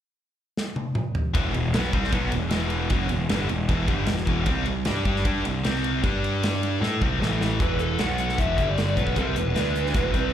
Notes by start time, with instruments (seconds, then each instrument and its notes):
0.57 snare
0.76 high tom
0.95 mid tom
1.15 floor tom
1.34 picked electric bass E1, distorted electric guitar E2 B2 E3, kick, ride
1.54 picked electric bass E1, distorted electric guitar E2 B2, ride
1.74 picked electric bass B1, distorted electric guitar B2 F#3 B3, snare, ride
1.93 picked electric bass C2, distorted electric guitar C3 G3 C4, kick, ride
2.04 snare
2.12 picked electric bass B1, distorted electric guitar B2 F#3 B3, kick, ride
2.32 picked electric bass E1, distorted electric guitar E2 B2, ride
2.51 picked electric bass E1, distorted electric guitar E2 B2 E3, snare, ride
2.70 ride
2.90 picked electric bass F#1, distorted electric guitar F#2 C#3 F#3, kick, ride
3.09 picked electric bass E1, distorted electric guitar E2 B2, ride
3.29 picked electric bass G1, distorted electric guitar G2 D3 G3, snare, ride
3.49 picked electric bass E1, distorted electric guitar E2 B2, ride
3.69 picked electric bass E1, distorted electric guitar E2 B2 E3, kick, ride
3.88 picked electric bass G1, distorted electric guitar G2 D3 G3, kick, ride
4.06 picked electric bass E1, distorted electric guitar E2 B2, snare, ride
4.17 snare
4.27 picked electric bass E1, distorted electric guitar E2 B2 E3, kick, ride
4.46 picked electric bass C2, distorted electric guitar C3 G3 C4, kick, ride
4.66 picked electric bass C2, distorted electric guitar C3 G3, ride
4.85 picked electric bass G2, distorted electric guitar G3 D4 G4, snare, ride
5.05 picked electric bass G2, distorted electric guitar G3 D4 G4, kick, ride
5.16 snare
5.25 picked electric bass G2, distorted electric guitar G3 D4 G4, kick, ride
5.44 picked electric bass C2, distorted electric guitar C3 G3, ride
5.63 picked electric bass C2, distorted electric guitar C3 G3 C4, snare, ride
5.76 snare
5.84 ride
6.02 picked electric bass G2, distorted electric guitar G3 D4 G4, kick, ride
6.24 ride
6.43 snare, ride
6.63 ride
6.81 picked electric bass A2, distorted electric guitar A3 E4 A4, snare
7.01 picked electric bass C2, distorted electric guitar C3 G3 C4, kick
7.21 picked electric bass A1, distorted electric guitar A2 E3 A3, snare
7.41 snare
7.60 picked electric bass E1, distorted electric guitar E2 B2 E3, lead electric guitar B4, kick, closed hi-hat
7.79 lead electric guitar A4, closed hi-hat
7.99 picked electric bass B1, distorted electric guitar B2 F#3 B3, lead electric guitar F#5, snare, closed hi-hat
8.18 lead electric guitar F#5, closed hi-hat
8.29 snare
8.38 picked electric bass E1, distorted electric guitar E2 B2 E3, lead electric guitar E5, kick, closed hi-hat
8.57 picked electric bass G1, distorted electric guitar G2 D3 G3, kick, closed hi-hat
8.68 lead electric guitar D5
8.78 lead electric guitar D5, snare, closed hi-hat
8.96 picked electric bass B1, distorted electric guitar B2 F#3 B3, lead electric guitar B4, kick, closed hi-hat
9.07 kick
9.16 picked electric bass C2, distorted electric guitar C3 G3 C4, lead electric guitar B4, kick, closed hi-hat
9.35 picked electric bass E1, distorted electric guitar E2 B2, closed hi-hat
9.55 picked electric bass D2, distorted electric guitar D3 A3 D4, snare, closed hi-hat
9.75 closed hi-hat
9.86 snare
9.93 picked electric bass E1, distorted electric guitar E2 B2 E3, kick, closed hi-hat
10.13 picked electric bass C2, distorted electric guitar C3 G3 C4, kick, closed hi-hat